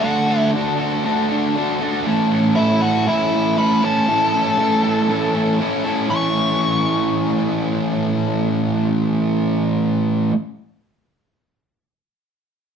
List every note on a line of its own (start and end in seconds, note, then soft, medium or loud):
0.00 0.52 D3 loud
0.00 0.54 A3 medium
0.00 0.30 D4 loud
0.00 0.50 F#4 medium
0.00 0.29 F#4 loud
0.00 0.49 F#5 medium
0.05 0.27 A4 loud
0.28 0.54 D4 medium
0.28 0.55 F#4 medium
0.28 0.56 A4 medium
0.53 1.03 D3 medium
0.53 1.04 A3 loud
0.53 0.79 D4 loud
0.53 0.78 F#4 medium
0.53 0.78 A4 loud
0.79 1.04 D4 medium
0.79 1.04 F#4 medium
0.79 1.05 A4 medium
1.04 1.55 D3 loud
1.04 1.55 A3 loud
1.04 1.30 D4 loud
1.04 1.30 F#4 loud
1.04 1.29 A4 loud
1.29 1.55 D4 medium
1.29 1.56 F#4 medium
1.29 1.57 A4 medium
1.55 2.07 A3 medium
1.55 1.82 D4 medium
1.55 1.81 F#4 medium
1.55 1.80 A4 medium
1.80 2.06 D4 medium
1.80 2.05 F#4 medium
1.80 2.08 A4 medium
2.06 2.56 A2 loud
2.06 2.56 E3 loud
2.06 2.34 A3 loud
2.06 2.33 C#4 loud
2.06 2.33 E4 loud
2.06 2.31 A4 loud
2.31 2.57 A3 medium
2.31 2.58 C#4 medium
2.31 2.58 E4 medium
2.31 2.58 A4 medium
2.56 3.07 A2 loud
2.56 3.07 E3 medium
2.56 2.85 A3 loud
2.56 2.84 C#4 loud
2.56 2.81 E4 medium
2.56 2.83 E4 loud
2.56 2.82 A4 loud
2.56 2.81 E5 medium
2.82 3.08 A3 medium
2.82 3.08 C#4 medium
2.82 3.08 E4 medium
2.82 3.06 F#4 medium
2.82 3.09 A4 medium
2.82 3.07 F#5 loud
3.07 4.07 A2 loud
3.07 4.08 E3 loud
3.07 3.34 A3 loud
3.07 3.32 C#4 loud
3.07 3.32 E4 loud
3.07 3.55 E4 medium
3.07 3.31 A4 loud
3.07 3.60 E5 medium
3.31 3.57 A3 medium
3.31 3.58 C#4 medium
3.31 3.59 E4 medium
3.31 3.59 A4 medium
3.57 3.84 A3 medium
3.57 3.83 C#4 medium
3.57 3.82 E4 medium
3.57 3.81 A4 medium
3.57 3.82 B4 medium
3.57 3.82 B5 loud
3.82 4.07 A3 medium
3.82 4.08 C#4 medium
3.82 4.07 E4 medium
3.82 4.08 A4 medium
3.82 5.57 A4 medium
3.82 5.57 A5 medium
4.07 4.56 A2 medium
4.07 4.57 E3 loud
4.07 4.34 A3 loud
4.07 4.34 C#4 loud
4.07 4.33 E4 loud
4.07 4.32 A4 loud
4.33 4.57 A3 medium
4.33 4.58 C#4 medium
4.33 4.59 E4 medium
4.33 4.59 A4 medium
4.58 5.07 A2 loud
4.58 5.08 E3 medium
4.58 4.85 A3 medium
4.58 4.84 C#4 loud
4.58 4.83 E4 loud
4.58 4.82 A4 loud
4.83 5.08 A3 medium
4.83 5.09 C#4 medium
4.83 5.09 E4 medium
4.83 5.09 A4 medium
5.08 5.59 A2 loud
5.08 5.60 E3 medium
5.08 5.35 A3 medium
5.08 5.34 C#4 loud
5.08 5.34 E4 loud
5.08 5.32 A4 loud
5.33 5.58 A3 medium
5.33 5.59 C#4 medium
5.33 5.60 E4 medium
5.33 5.61 A4 medium
5.59 5.86 A3 medium
5.59 5.85 C#4 medium
5.59 5.84 E4 medium
5.59 5.83 A4 medium
5.84 6.09 A3 medium
5.84 6.09 C#4 medium
5.84 6.09 E4 medium
5.84 6.09 A4 medium
6.08 10.30 A2 medium
6.08 10.32 E3 loud
6.08 10.33 A3 loud
6.08 10.33 C#4 loud
6.08 10.29 C#6 medium
6.12 10.35 E4 loud